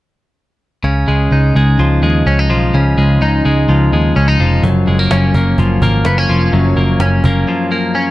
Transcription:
0.84 C#2 C#3
1.08 C#2 G#3
1.31 C#2 D#4
1.55 C#2 G#3
1.79 C#2 F3
2.02 D#2 G#3
2.26 C#2 C#4
2.39 D#4
2.50 B1 F3
2.74 C#2 C#3
2.97 C#2 G#3
3.21 C#2 D#4
3.45 C#2 G#3
3.69 C#2 F3
3.92 D#2 G#3
4.16 C#2 C#4
4.28 D#4
4.40 F1 F3
4.63 F#1 F#2, cajon bass
4.87 F#1 G#3, cajon slap
4.99 A#3
5.11 F#1 C#4, cajon slap
5.34 F#1 A#3, cajon bass
5.58 F#1 F3, cajon bass, cajon slap
5.82 G#1 A#3, cajon bass
6.05 F#1 B3, cajon slap
6.18 C#4
6.29 F1 F3, cajon slap
6.53 F#1 F#2, cajon slap
6.76 F#1 A#3, cajon slap
7.00 F#1 C#4, cajon slap
7.24 F#1 A#3, cajon bass
7.48 F3
7.71 A#3
7.95 C#4

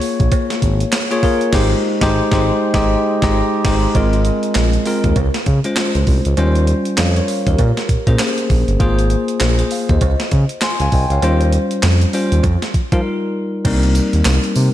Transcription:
Already playing: A#3 F4 G#4 C#5
0.02 open hi-hat
0.20 A#1, kick, closed hi-hat
0.32 kick, closed hi-hat, cowbell
0.50 snare, closed hi-hat
0.62 G#1, kick, closed hi-hat
0.80 closed hi-hat
0.92 snare, clap, closed hi-hat, cowbell
1.11 A#3 F4 G#4 C#5, closed hi-hat
1.23 A#3 F4 G#4 A#4, kick, open hi-hat
1.41 closed hi-hat
1.53 G#1 G#3 D#4 G4 C5, kick, snare, crash
2.01 G#1 G#3 D#4 G4 C5, kick, snare
2.32 G#1 G#3 D#4 G4 C5, kick, snare
2.74 G#1 G#3 D#4 G4 D#5, kick, snare
3.22 G#1 G#3 D#4 G4 D#5, kick, snare
3.65 G#1 G#3 D#4 G4 C5, kick, snare, crash
3.95 G#1 G#3 C4 F4 A#4, kick, closed hi-hat, cowbell
4.13 closed hi-hat
4.25 closed hi-hat
4.43 closed hi-hat
4.55 A#1, snare, clap, closed hi-hat, cowbell
4.73 closed hi-hat
4.86 G#3 C4 F4 A#4, open hi-hat
5.04 D#2, kick, closed hi-hat
5.16 C#2, kick, closed hi-hat, cowbell
5.34 snare, closed hi-hat
5.46 C#3, kick, closed hi-hat
5.64 G#3 C#4 F4 C5, closed hi-hat
5.76 snare, clap, closed hi-hat, cowbell
5.95 C#2, closed hi-hat
6.07 C2, kick, open hi-hat
6.25 C#2, closed hi-hat
6.37 D#2 G3 C#4 F4 C5, closed hi-hat, cowbell
6.55 closed hi-hat
6.67 closed hi-hat
6.85 closed hi-hat
6.97 F2 C#5 F5, snare, clap, closed hi-hat, cowbell
7.16 A#4 C#5, closed hi-hat
7.28 open hi-hat
7.47 D#2 G4 A#4, kick, closed hi-hat
7.58 A#2, kick, closed hi-hat, cowbell
7.77 snare, closed hi-hat
7.89 A#2, kick, closed hi-hat
8.07 A#2 A#3 C#4 G#4 C5, kick, closed hi-hat
8.19 snare, clap, closed hi-hat, cowbell
8.38 closed hi-hat
8.50 A#1, kick, open hi-hat
8.68 G1, closed hi-hat
8.80 G#1 A#3 F4 G#4 C5, kick, closed hi-hat, cowbell
8.99 closed hi-hat
9.10 closed hi-hat
9.28 closed hi-hat
9.40 A#1, snare, clap, closed hi-hat, cowbell
9.59 G#4 C5, closed hi-hat
9.71 F5, open hi-hat
9.89 D#2 C5 D#5, kick, closed hi-hat
10.01 C#2, kick, closed hi-hat, cowbell
10.20 snare, closed hi-hat
10.31 C#3, kick, closed hi-hat
10.49 closed hi-hat
10.61 G#5 C6, snare, clap, closed hi-hat, cowbell
10.80 C#2 F5 G#5, closed hi-hat
10.92 C2 D#5 G5, kick, open hi-hat
11.10 C#2 C#5 F5, closed hi-hat
11.22 D#2 G3 C#4 F4 C5, closed hi-hat, cowbell
11.41 closed hi-hat
11.52 closed hi-hat
11.71 closed hi-hat
11.83 F2, snare, clap, closed hi-hat, cowbell
12.01 closed hi-hat
12.13 G3 C#4 F4 C5, open hi-hat
12.32 D#2, closed hi-hat
12.43 F2, kick, closed hi-hat, cowbell
12.62 snare, closed hi-hat
12.74 F3, kick, closed hi-hat
12.92 F3 G3 D#4 F4 A#4, kick, closed hi-hat
13.65 C2 G3 A#3 C4 D#4 A#4, kick, closed hi-hat, crash, cowbell
13.83 closed hi-hat
13.95 closed hi-hat, tambourine
14.13 D#2, closed hi-hat
14.25 C2, snare, clap, closed hi-hat, tambourine, cowbell
14.44 closed hi-hat
14.56 C3, open hi-hat, tambourine

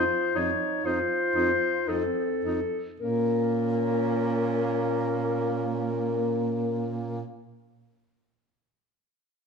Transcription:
Already playing: F4 C5
0.34 F2 D#4 C#5
0.83 F2 D#4 F4 C5
1.34 F2 D#4
1.87 F2 C4 D#4 A4
2.44 F2 D#4
3.00 A#2 A#3 C#4 A#4

